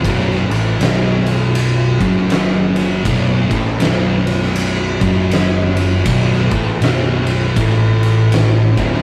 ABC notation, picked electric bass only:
X:1
M:4/4
L:1/8
Q:"Swing" 1/4=80
K:Bm
V:1 name="Picked electric bass" clef=bass
B,,,, A,,, B,,,,3 F,,,3 | B,,,, A,,, B,,,,3 F,,,3 | B,,,, A,,, B,,,,2 A,,,3 D,,, |]